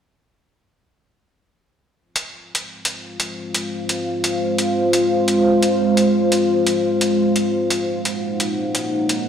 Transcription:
1.98 G#3 F4 C5 F5
2.16 closed hi-hat
2.55 closed hi-hat
2.85 closed hi-hat
3.20 closed hi-hat
3.55 closed hi-hat
3.89 closed hi-hat
4.24 closed hi-hat
4.58 closed hi-hat
4.93 closed hi-hat
5.28 closed hi-hat
5.63 closed hi-hat
5.97 closed hi-hat
6.32 closed hi-hat
6.67 closed hi-hat
7.01 closed hi-hat
7.36 closed hi-hat
7.53 A#3 D#4 C#5 F#5
7.70 closed hi-hat
8.05 closed hi-hat
8.40 closed hi-hat
8.75 closed hi-hat
9.09 closed hi-hat

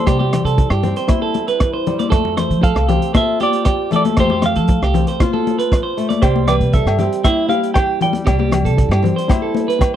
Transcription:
Already playing: C4 E4 C5
0.06 C3 G3 G4, kick, cross-stick, closed hi-hat
0.19 G4, high conga
0.33 cross-stick, closed hi-hat, low conga
0.45 C3 A4, closed hi-hat
0.58 E3, kick, closed hi-hat
0.70 G2 G4, cross-stick
0.83 C4, closed hi-hat, low conga
0.96 C5, closed hi-hat
1.07 E4, muted nylon-string guitar stroke, kick, cross-stick, closed hi-hat, high conga
1.22 A4
1.34 closed hi-hat, high conga
1.48 B4, closed hi-hat
1.60 E3, kick, cross-stick, closed hi-hat
1.73 C5
1.87 G3, closed hi-hat, low conga
1.99 D5, closed hi-hat, high conga
2.10 F2 A3 A4, kick, cross-stick, closed hi-hat
2.25 high conga
2.37 C5, cross-stick, closed hi-hat, low conga
2.50 F3, closed hi-hat
2.61 F3 A4 F5, kick, closed hi-hat
2.75 C2, cross-stick
2.88 C4 G4, closed hi-hat, low conga
3.02 closed hi-hat
3.14 C3 F4 A4 E5, kick, cross-stick, closed hi-hat, high conga
3.40 G4 D5, closed hi-hat, high conga
3.53 closed hi-hat
3.65 F3 G4, kick, cross-stick, closed hi-hat
3.91 A3 A4, closed hi-hat, low conga
3.96 D5
4.05 closed hi-hat, high conga
4.17 F2 A3 G4 C5, kick, cross-stick, closed hi-hat, low conga
4.30 G4, high conga
4.42 F5, cross-stick, closed hi-hat, low conga
4.55 F3 A4, closed hi-hat
4.68 F3, kick, closed hi-hat
4.82 C2 G4, cross-stick
4.94 C4, closed hi-hat, low conga
5.07 C5, closed hi-hat
5.20 C3 F4, kick, cross-stick, closed hi-hat, high conga
5.33 A4, high conga
5.47 closed hi-hat, high conga
5.59 B4, closed hi-hat
5.72 F3, kick, cross-stick, closed hi-hat
5.83 C5
5.97 A3, closed hi-hat
6.09 D5, closed hi-hat, high conga
6.22 C2 C3 G3 G4 C5, kick, cross-stick, closed hi-hat, low agogo
6.36 high conga
6.48 B4 D5, cross-stick, closed hi-hat, low conga, low agogo
6.60 C3, closed hi-hat
6.73 E3 A4 E5, kick, closed hi-hat
6.86 G2, cross-stick, low agogo
6.99 C4 G4, closed hi-hat, low conga
7.12 closed hi-hat
7.24 G2 E4 E5, kick, cross-stick, closed hi-hat, high conga, low agogo
7.49 G4 F5, closed hi-hat, high conga
7.63 closed hi-hat
7.74 E3 G4 G5, kick, cross-stick, closed hi-hat, low agogo
8.01 G3 G5, closed hi-hat, low conga
8.13 closed hi-hat, high conga
8.26 C2 C3 G3 G4, kick, cross-stick, closed hi-hat, low agogo
8.39 G4, high conga
8.52 cross-stick, closed hi-hat, low conga, low agogo
8.65 C3 A4, closed hi-hat
8.77 E3, kick, closed hi-hat
8.89 G2 G4, cross-stick, low agogo
9.02 C4, closed hi-hat, low conga
9.16 C5, closed hi-hat
9.28 G2 E4, kick, cross-stick, closed hi-hat, high conga, low agogo
9.42 A4
9.55 closed hi-hat, high conga
9.68 B4, closed hi-hat
9.79 E3, kick, cross-stick, closed hi-hat, low agogo

